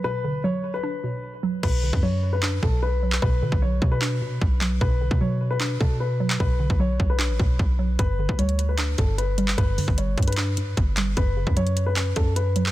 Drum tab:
CC |--------------------------------|x-------------------------------|--------------------------------|--------------------------------|
HH |--------------------------------|--------------------------------|--------------------------------|--------------------------------|
CP |--------------------------------|----------------x-------------x-|----------------x-----------x---|----------------x-------------x-|
BD |--------------------------------|o-----o-------------o-----------|o-----o-----o-----------o-------|o-----o-------------o-----------|

CC |--------------------------------|--------------------------------|--------------------------------|--------------------------------|
HH |--------------------------------|x-------x-x-x---x---x---x---x---|x---o---x---xxxxx---x---x---x---|x-------x-x-x---x---x---x---x---|
CP |----------------x---------------|----------------x-------------x-|----------------x-----------x---|----------------x-------------x-|
BD |o-----o-----o-------o---o-------|o-----o-------------o-----------|o-----o-----o-----------o-------|o-----o-------------o-----------|